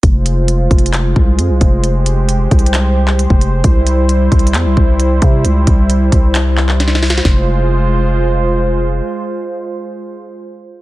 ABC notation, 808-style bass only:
X:1
M:4/4
L:1/16
Q:1/4=133
K:Fm
V:1 name="808-style bass" clef=bass
F,,,6 F,,,4 C,,2 F,, C,, F,,,2- | F,,,6 C,,6- C,, F,,,3 | C,,6 C,,2 =E,, C,, C,,4 C,2 | D,,2 C,,4 C,,8- C,,2 |
F,,,16 | z16 |]